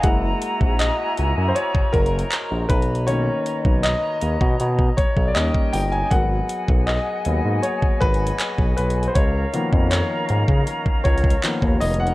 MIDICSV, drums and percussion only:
0, 0, Header, 1, 2, 480
1, 0, Start_track
1, 0, Key_signature, 5, "minor"
1, 0, Tempo, 759494
1, 26, Time_signature, 4, 2, 24, 8
1, 7675, End_track
2, 0, Start_track
2, 0, Title_t, "Drums"
2, 24, Note_on_c, 9, 42, 81
2, 25, Note_on_c, 9, 36, 119
2, 87, Note_off_c, 9, 42, 0
2, 88, Note_off_c, 9, 36, 0
2, 264, Note_on_c, 9, 42, 88
2, 327, Note_off_c, 9, 42, 0
2, 385, Note_on_c, 9, 36, 98
2, 448, Note_off_c, 9, 36, 0
2, 502, Note_on_c, 9, 42, 69
2, 507, Note_on_c, 9, 39, 114
2, 565, Note_off_c, 9, 42, 0
2, 570, Note_off_c, 9, 39, 0
2, 741, Note_on_c, 9, 42, 68
2, 804, Note_off_c, 9, 42, 0
2, 985, Note_on_c, 9, 42, 83
2, 1048, Note_off_c, 9, 42, 0
2, 1105, Note_on_c, 9, 36, 88
2, 1168, Note_off_c, 9, 36, 0
2, 1225, Note_on_c, 9, 42, 41
2, 1226, Note_on_c, 9, 36, 93
2, 1289, Note_off_c, 9, 36, 0
2, 1289, Note_off_c, 9, 42, 0
2, 1305, Note_on_c, 9, 42, 57
2, 1368, Note_off_c, 9, 42, 0
2, 1385, Note_on_c, 9, 42, 70
2, 1448, Note_off_c, 9, 42, 0
2, 1466, Note_on_c, 9, 39, 127
2, 1467, Note_on_c, 9, 42, 77
2, 1529, Note_off_c, 9, 39, 0
2, 1530, Note_off_c, 9, 42, 0
2, 1705, Note_on_c, 9, 36, 109
2, 1705, Note_on_c, 9, 42, 75
2, 1768, Note_off_c, 9, 36, 0
2, 1768, Note_off_c, 9, 42, 0
2, 1785, Note_on_c, 9, 42, 57
2, 1848, Note_off_c, 9, 42, 0
2, 1865, Note_on_c, 9, 42, 43
2, 1928, Note_off_c, 9, 42, 0
2, 1944, Note_on_c, 9, 42, 74
2, 2007, Note_off_c, 9, 42, 0
2, 2185, Note_on_c, 9, 42, 84
2, 2248, Note_off_c, 9, 42, 0
2, 2305, Note_on_c, 9, 36, 96
2, 2368, Note_off_c, 9, 36, 0
2, 2423, Note_on_c, 9, 42, 71
2, 2428, Note_on_c, 9, 39, 115
2, 2487, Note_off_c, 9, 42, 0
2, 2491, Note_off_c, 9, 39, 0
2, 2662, Note_on_c, 9, 42, 67
2, 2725, Note_off_c, 9, 42, 0
2, 2785, Note_on_c, 9, 36, 97
2, 2848, Note_off_c, 9, 36, 0
2, 2905, Note_on_c, 9, 42, 78
2, 2968, Note_off_c, 9, 42, 0
2, 3025, Note_on_c, 9, 36, 86
2, 3088, Note_off_c, 9, 36, 0
2, 3146, Note_on_c, 9, 42, 68
2, 3147, Note_on_c, 9, 36, 96
2, 3209, Note_off_c, 9, 42, 0
2, 3210, Note_off_c, 9, 36, 0
2, 3265, Note_on_c, 9, 36, 88
2, 3328, Note_off_c, 9, 36, 0
2, 3388, Note_on_c, 9, 39, 125
2, 3388, Note_on_c, 9, 42, 78
2, 3451, Note_off_c, 9, 39, 0
2, 3452, Note_off_c, 9, 42, 0
2, 3506, Note_on_c, 9, 36, 95
2, 3569, Note_off_c, 9, 36, 0
2, 3626, Note_on_c, 9, 42, 71
2, 3626, Note_on_c, 9, 46, 79
2, 3690, Note_off_c, 9, 42, 0
2, 3690, Note_off_c, 9, 46, 0
2, 3747, Note_on_c, 9, 42, 45
2, 3810, Note_off_c, 9, 42, 0
2, 3865, Note_on_c, 9, 42, 81
2, 3866, Note_on_c, 9, 36, 116
2, 3929, Note_off_c, 9, 36, 0
2, 3929, Note_off_c, 9, 42, 0
2, 4106, Note_on_c, 9, 42, 84
2, 4169, Note_off_c, 9, 42, 0
2, 4225, Note_on_c, 9, 36, 95
2, 4289, Note_off_c, 9, 36, 0
2, 4344, Note_on_c, 9, 42, 69
2, 4349, Note_on_c, 9, 39, 114
2, 4407, Note_off_c, 9, 42, 0
2, 4412, Note_off_c, 9, 39, 0
2, 4583, Note_on_c, 9, 42, 64
2, 4646, Note_off_c, 9, 42, 0
2, 4825, Note_on_c, 9, 42, 82
2, 4888, Note_off_c, 9, 42, 0
2, 4946, Note_on_c, 9, 36, 93
2, 5009, Note_off_c, 9, 36, 0
2, 5066, Note_on_c, 9, 42, 44
2, 5067, Note_on_c, 9, 36, 92
2, 5129, Note_off_c, 9, 42, 0
2, 5130, Note_off_c, 9, 36, 0
2, 5146, Note_on_c, 9, 42, 57
2, 5209, Note_off_c, 9, 42, 0
2, 5226, Note_on_c, 9, 42, 68
2, 5289, Note_off_c, 9, 42, 0
2, 5307, Note_on_c, 9, 39, 127
2, 5308, Note_on_c, 9, 42, 81
2, 5370, Note_off_c, 9, 39, 0
2, 5371, Note_off_c, 9, 42, 0
2, 5425, Note_on_c, 9, 36, 94
2, 5489, Note_off_c, 9, 36, 0
2, 5546, Note_on_c, 9, 42, 70
2, 5609, Note_off_c, 9, 42, 0
2, 5626, Note_on_c, 9, 42, 58
2, 5689, Note_off_c, 9, 42, 0
2, 5706, Note_on_c, 9, 42, 41
2, 5769, Note_off_c, 9, 42, 0
2, 5785, Note_on_c, 9, 42, 77
2, 5786, Note_on_c, 9, 36, 119
2, 5848, Note_off_c, 9, 42, 0
2, 5849, Note_off_c, 9, 36, 0
2, 6025, Note_on_c, 9, 42, 82
2, 6088, Note_off_c, 9, 42, 0
2, 6145, Note_on_c, 9, 36, 100
2, 6208, Note_off_c, 9, 36, 0
2, 6263, Note_on_c, 9, 42, 72
2, 6268, Note_on_c, 9, 39, 115
2, 6326, Note_off_c, 9, 42, 0
2, 6331, Note_off_c, 9, 39, 0
2, 6502, Note_on_c, 9, 42, 67
2, 6565, Note_off_c, 9, 42, 0
2, 6625, Note_on_c, 9, 36, 94
2, 6688, Note_off_c, 9, 36, 0
2, 6745, Note_on_c, 9, 42, 79
2, 6808, Note_off_c, 9, 42, 0
2, 6865, Note_on_c, 9, 36, 86
2, 6928, Note_off_c, 9, 36, 0
2, 6985, Note_on_c, 9, 42, 41
2, 6986, Note_on_c, 9, 36, 89
2, 7048, Note_off_c, 9, 42, 0
2, 7049, Note_off_c, 9, 36, 0
2, 7065, Note_on_c, 9, 42, 59
2, 7105, Note_on_c, 9, 36, 92
2, 7128, Note_off_c, 9, 42, 0
2, 7145, Note_on_c, 9, 42, 71
2, 7168, Note_off_c, 9, 36, 0
2, 7209, Note_off_c, 9, 42, 0
2, 7227, Note_on_c, 9, 39, 123
2, 7228, Note_on_c, 9, 42, 81
2, 7291, Note_off_c, 9, 39, 0
2, 7291, Note_off_c, 9, 42, 0
2, 7345, Note_on_c, 9, 36, 97
2, 7408, Note_off_c, 9, 36, 0
2, 7466, Note_on_c, 9, 42, 71
2, 7466, Note_on_c, 9, 46, 74
2, 7529, Note_off_c, 9, 42, 0
2, 7529, Note_off_c, 9, 46, 0
2, 7545, Note_on_c, 9, 42, 57
2, 7608, Note_off_c, 9, 42, 0
2, 7625, Note_on_c, 9, 42, 41
2, 7675, Note_off_c, 9, 42, 0
2, 7675, End_track
0, 0, End_of_file